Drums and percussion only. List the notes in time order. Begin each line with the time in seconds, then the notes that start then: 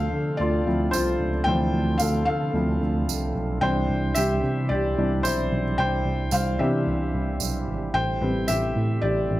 0.93 tambourine
2.00 tambourine
3.09 tambourine
4.15 tambourine
5.25 tambourine
6.31 tambourine
7.40 tambourine
8.48 tambourine